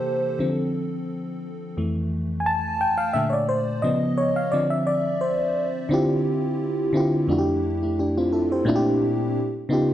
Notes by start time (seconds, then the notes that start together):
Already playing: C3 E3 A#3 G4 A4 C5
0.39 D3 F3 C4
1.77 F2 E3 A3
2.40 G#5
2.46 A5
2.81 G5
2.98 F5
3.13 A#2 D3 A3 E5
3.30 C#5 D5
3.49 C5
3.82 C#3 F3 B3 D#5
4.18 C#5
4.36 F5
4.52 D3 F3 C4 D5
4.70 E5
4.87 D5
5.21 C5
5.89 D3 C4 E4 F4
5.94 G4
6.93 D3 C4 E4 F4
6.97 G4
7.28 F2 A3 D4 E4
7.32 F#4
7.39 G4
7.83 A3 E4
7.99 D4 G4
8.17 C4 F4
8.33 E4 A4
8.52 G4 C5
8.65 A#2 A3 C4 D4 E4
8.69 F4
8.76 G4
9.69 C#3 B3 D#4 F4
9.73 G4